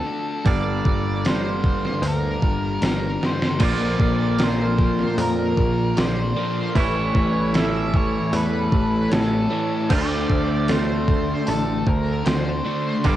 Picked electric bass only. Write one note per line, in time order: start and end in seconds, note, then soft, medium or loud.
0.46 0.80 G1 loud
0.85 1.87 G1 medium
2.02 2.37 D2 loud
2.42 2.77 G1 medium
2.82 3.16 G1 medium
3.60 3.94 A#1 loud
3.99 5.02 A#1 medium
5.18 5.52 F2 loud
5.57 5.92 A#1 medium
5.97 6.31 A#1 loud
6.76 7.10 A1 loud
7.15 8.17 A1 medium
8.33 8.67 E2 loud
8.72 9.06 A1 medium
9.11 9.46 A1 loud
9.90 10.24 D2 loud
10.30 11.32 D2 medium
11.48 11.82 A1 loud
11.87 12.21 D2 loud
12.26 12.60 D2 medium
13.05 13.16 G1 loud